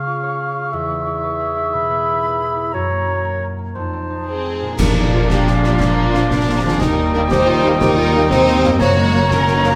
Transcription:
Already playing: C#3 G#3 C#4 G#4 C#5 F5 C#6
0.07 F4
0.23 C#5
0.40 G#4
0.56 F4
0.73 E2 E3 G#4 E5
0.90 B3
1.06 E4
1.23 B4
1.40 G#4
1.57 E4
1.73 B2 B5
1.90 B3
2.08 E4
2.24 B4
2.40 G#4
2.57 E4
2.72 F#2 F#3 F#4 C#5 A#5
2.90 A#3
3.07 C#4
3.24 A#4
3.41 C#4
3.59 A#3
3.74 F2 F3 D#4 C5 A5
3.93 C4
4.10 D#4
4.27 C4 G#4 C5
4.45 A3
4.62 A#2 D#4
4.66 A#3
4.71 D4
4.75 A#1 A#2 F3 D4 A#4 F5, concert bass drum, crash
4.79 A#2 D4 D5, concert bass drum, snare, crash
4.96 D#4
5.13 F3 D4 F4
5.30 A#3 D4 G4, concert bass drum, snare
5.47 snare
5.55 C4 G#4
5.63 F3 A#3 D4 G4, snare
5.80 A#3 D4 F4, concert bass drum, snare
6.14 F3 D4, snare
6.31 D4 A#4, concert bass drum, snare
6.56 A#3 G4
6.63 D#3 F3 C4 D4 G#4
6.68 A#3
6.73 G4
6.77 G3 A#3 A#4 D#5
6.81 D#2 D#4 A#4 G5, concert bass drum, snare
7.14 G3 A#3 D4 A#4
7.30 D#4 G4 C5, concert bass drum, snare
7.47 F4
7.64 G3 A#3 D#4
7.81 D#4 G4 A#4, concert bass drum, snare
7.97 F4
8.15 G3 A#3 D#4
8.30 C4 D#4 C5, concert bass drum, snare
8.48 snare
8.63 F#2 G3 A#3, snare
8.67 A#3
8.72 A#4
8.80 F#1 F#2 F#3 A#3 F#4 C#5 A#5, concert bass drum, snare
8.98 G#3
9.13 F#3 A#3
9.30 C#4 A#4, concert bass drum, snare
9.47 snare
9.55 D#4 C5
9.64 F#3 A#3 C#4 A#4, snare

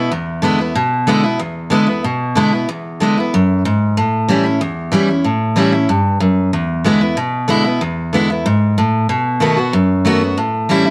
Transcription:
Already playing: B3 E4
0.11 E2
0.42 D3 G#3 B3 E4
0.58 B3 E4
0.75 B2
1.07 D3 G#3 B3 E4
1.24 B3 E4
1.39 E2
1.70 D3 G#3 B3 E4
1.87 B3 E4
2.04 B2
2.35 D3 G#3 B3 E4
2.52 B3 E4
2.69 E2
3.00 D3 G#3 B3 E4
3.17 B3 E4
3.34 F#2
3.65 G#2
3.97 A2
4.28 E3 G3 C#4 E4
4.44 C#4 E4
4.61 E2
4.92 E3 G3 C#4 E4
5.08 C#4 E4
5.24 A2
5.56 E3 G3 C#4 E4
5.72 C#4 E4
5.89 G2
6.20 F#2
6.53 E2
6.84 D3 G#3 B3 E4
7.01 B3 E4
7.17 B2
7.48 D3 G#3 B3 E4
7.64 B3 E4
7.81 E2
8.13 D3 G#3 B3 E4
8.30 B3 E4
8.46 G#2
8.78 A2
9.09 B2
9.40 D#3 A3 B3 F#4
9.57 B3 F#4
9.73 F#2
10.05 D#3 A3 B3 F#4
10.21 B3 F#4
10.38 A2
10.69 E3 G3 C#4 E4
10.85 E4

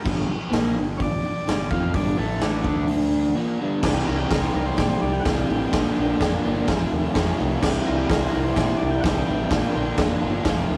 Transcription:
0.05 G1 G2 D3 G3, kick, crash
0.28 muted overdriven electric guitar stroke
0.50 A#1 A#2 F3 A#3, snare, open hi-hat
0.75 G1 G2 D3
0.97 G1 G2 D3 C#5, kick, open hi-hat
1.02 D5
1.23 muted overdriven electric guitar stroke, muted fingered electric bass stroke
1.47 G1 G2 D3, snare, open hi-hat
1.71 F2 F3 C4 F4 F5, kick
1.94 G1 G2 D3 G3 D5, kick, open hi-hat
2.17 A1 A2 E3 A3 A4
2.41 A3 D4, snare, open hi-hat
2.64 D2 D3 A3 D4, kick
2.87 open hi-hat
3.35 A#2 F3 A#3
3.59 G2 D3 G3
3.82 C2 C3 E3 G3 C4 D4 G4, kick, snare, crash
3.94 G4
4.05 C2 G3 C4 G4 A#4
4.17 G4
4.30 C2 E3 G3 C4 G4 A#4, kick, snare, open hi-hat
4.42 C5
4.53 C2 G3 C4 G4 A#4
4.66 C5
4.77 A#2 D5, kick, snare, open hi-hat
4.89 C5
5.01 C2 D5
5.13 G5
5.20 F#5 G5
5.25 C2 C3 E3 G3 C4 G4, kick, snare, open hi-hat
5.48 A1 G3 C4 G4
5.72 A#1 A#2 D3 A#3 D4 F4, kick, snare, open hi-hat
5.96 A#1 A#3 D4 F4
6.20 F2 D3 A#3 D4 F4, kick, snare, open hi-hat
6.44 G1 A#3 D4 F4
6.67 F1 F2 C3 F3 A3 C4 F4, kick, snare, open hi-hat
6.91 D#2
7.15 F2 C3 F3 A3 C4 F4, kick, snare, open hi-hat
7.37 C2 F3 A3 C4 F4
7.61 C2 C3 E3 G3 C4 D4 E4, kick, snare, crash
7.72 G4
7.84 C2 G3 C4 E4 A#4
7.97 G4
8.07 C2 E3 G3 C4 E4 A#4, kick, snare, open hi-hat
8.20 C5
8.30 C4 E4 A#4
8.35 C2 G3
8.43 C5
8.53 A#2 D5, kick, open hi-hat
8.57 snare
8.64 C5
8.77 D5
8.82 C2
8.91 G5
9.00 C3 E3 F#5 G5, kick
9.04 C2 G3 C4 E4, snare, open hi-hat
9.26 A1 G3 C4 E4
9.49 A#1 A#2 D3 A#3 D4 F4, kick, snare, open hi-hat
9.73 A#1 A#3 D4 F4
9.97 F2 D3 A#3 D4 F4, kick, snare, open hi-hat
10.21 G1 A#3 D4 F4
10.44 F1 F2 C3 F3 A3 C4 F4, kick, snare, open hi-hat
10.70 D#2

